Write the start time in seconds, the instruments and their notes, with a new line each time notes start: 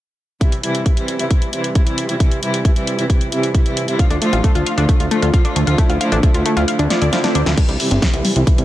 0.41 string section C3 E3 G3 E4, kick, closed hi-hat
0.52 closed hi-hat
0.63 string section C3 E3 G3 E4, closed hi-hat
0.75 closed hi-hat
0.86 string section C3 E3 G3 E4, kick, closed hi-hat
0.97 string section C3 E3 G3 E4, closed hi-hat
1.08 closed hi-hat
1.19 string section C3 E3 G3 E4, closed hi-hat
1.31 string section C3 E3 G3 E4, kick, closed hi-hat
1.42 closed hi-hat
1.53 string section C3 E3 G3 E4, closed hi-hat
1.64 closed hi-hat
1.75 string section C3 E3 G3 E4, kick, closed hi-hat
1.87 string section C3 E3 G3 E4, closed hi-hat
1.98 closed hi-hat
2.09 string section C3 E3 G3 E4, closed hi-hat
2.20 string section C3 E3 G3 E4, kick, closed hi-hat
2.31 closed hi-hat
2.42 string section C3 E3 G3 E4, closed hi-hat
2.54 closed hi-hat
2.65 string section C3 E3 G3 E4, kick, closed hi-hat
2.76 string section C3 E3 G3 E4, closed hi-hat
2.87 closed hi-hat
2.99 string section C3 E3 G3 E4, closed hi-hat
3.10 string section C3 E3 G3 E4, kick, closed hi-hat
3.21 closed hi-hat
3.32 string section C3 E3 G3 E4, closed hi-hat
3.43 closed hi-hat
3.54 string section C3 E3 G3 E4, kick, closed hi-hat
3.66 string section C3 E3 G3 E4, closed hi-hat
3.77 closed hi-hat
3.88 string section C3 E3 G3 E4, closed hi-hat
3.99 string section D3 F3 A3 F4, synth arpeggio sound F5, kick, closed hi-hat
4.10 analog synth bass D2, synth arpeggio sound D4, closed hi-hat
4.22 string section D3 F3 A3 F4, synth arpeggio sound A3, closed hi-hat
4.33 analog synth bass A1, synth arpeggio sound F4, closed hi-hat
4.44 string section D3 F3 A3 F4, synth arpeggio sound A3, kick, closed hi-hat
4.55 analog synth bass D2, string section D3 F3 A3 F4, synth arpeggio sound F4, closed hi-hat
4.66 synth arpeggio sound F5, closed hi-hat
4.78 analog synth bass D2, string section D3 F3 A3 F4, synth arpeggio sound D4, closed hi-hat
4.89 string section D3 F3 A3 F4, synth arpeggio sound A3, kick, closed hi-hat
5.00 analog synth bass D2, synth arpeggio sound F4, closed hi-hat
5.11 string section D3 F3 A3 F4, synth arpeggio sound A3, closed hi-hat
5.22 analog synth bass D2, synth arpeggio sound F4, closed hi-hat
5.34 string section D3 F3 A3 F4, synth arpeggio sound F5, kick, closed hi-hat
5.45 string section D3 F3 A3 F4, synth arpeggio sound D4, closed hi-hat
5.56 analog synth bass D2, synth arpeggio sound A3, closed hi-hat
5.67 analog synth bass D2, string section D3 F3 A3 F4, synth arpeggio sound F4, closed hi-hat
5.78 string section D3 F3 A3 E4, synth arpeggio sound A3, kick, closed hi-hat
5.89 analog synth bass D2, synth arpeggio sound F4, closed hi-hat
6.01 string section D3 F3 A3 E4, synth arpeggio sound F5, closed hi-hat
6.12 analog synth bass A1, synth arpeggio sound D4, closed hi-hat
6.23 string section D3 F3 A3 E4, synth arpeggio sound A3, kick, closed hi-hat
6.34 analog synth bass D2, string section D3 F3 A3 E4, synth arpeggio sound F4, closed hi-hat
6.46 synth arpeggio sound A3, closed hi-hat
6.57 analog synth bass D2, string section D3 F3 A3 E4, synth arpeggio sound F4, closed hi-hat
6.68 string section D3 F3 A3 E4, synth arpeggio sound F5, closed hi-hat, swell
6.79 analog synth bass D2, synth arpeggio sound D4, closed hi-hat
6.90 string section D3 F3 A3 E4, synth arpeggio sound D5, snare, closed hi-hat
7.02 analog synth bass D2, synth arpeggio sound D5, closed hi-hat
7.13 string section D3 F3 A3 E4, synth arpeggio sound F4, snare, closed hi-hat
7.24 string section D3 F3 A3 E4, synth arpeggio sound D4, snare, closed hi-hat
7.35 analog synth bass D2, synth arpeggio sound D4, closed hi-hat
7.46 analog synth bass D2, string section D3 F3 A3 E4, synth arpeggio sound A4, snare, closed hi-hat
7.57 string section C3 E3 G3 E4, synth arpeggio sound G3, kick, closed hi-hat, crash
7.69 analog synth bass C2, synth arpeggio sound E4, closed hi-hat
7.80 string section C3 E3 G3 E4, synth arpeggio sound E5, open hi-hat
7.91 analog synth bass G1, synth arpeggio sound C4, closed hi-hat
8.02 string section C3 E3 G3 E4, synth arpeggio sound G3, kick, snare, closed hi-hat
8.13 analog synth bass C2, string section C3 E3 G3 E4, synth arpeggio sound E4, closed hi-hat
8.25 synth arpeggio sound G3, open hi-hat
8.36 analog synth bass C2, string section C3 E3 G3 E4, synth arpeggio sound E4, closed hi-hat
8.47 string section C3 E3 G3 E4, synth arpeggio sound E5, kick, closed hi-hat
8.58 analog synth bass C2, synth arpeggio sound C4, closed hi-hat